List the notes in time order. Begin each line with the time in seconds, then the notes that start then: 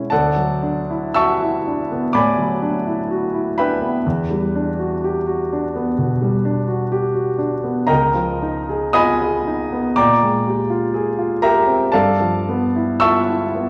Already playing: B2 G#3 C#4 E4 G#5 C#6 E6
0.10 D2 A4 D5 F#5 A5
0.36 F#3
0.63 D4
0.91 E4
1.14 F#4 E5 A5 C#6 E6
1.42 E4
1.67 D4
1.92 B3
2.13 A2 D5 G#5 B5 D6
2.38 F#3
2.62 D4
2.87 E4
3.11 F#4
3.34 E4
3.58 D4 B4 E5 G5 B5
3.81 B3
4.06 E2
4.30 G3
4.55 D4
4.79 F#4
5.04 G4
5.27 F#4
5.53 D4
5.76 B3
5.98 B2
6.22 G3
6.45 D4
6.68 F#4
6.92 G4
7.14 F#4
7.38 D4
7.64 B3
7.87 C#2 A#4 D#5 G5 A#5
8.14 F3
8.42 D#4
8.69 G#4
8.93 F4 D#5 G#5 B5 D#6
9.22 G#4
9.47 D#4
9.73 B3
9.96 A#2 D5 G5 A#5 D6
10.22 G#3
10.48 G4
10.70 F4
10.94 G#4
11.19 F4
11.42 G4 A#4 E5 G5 A#5
11.67 C4
11.92 G2 A4 D5 F5 A5
12.20 F3
12.49 B3
12.76 E4
13.00 F4 E5 A5 C#6 E6
13.29 E4
13.55 B3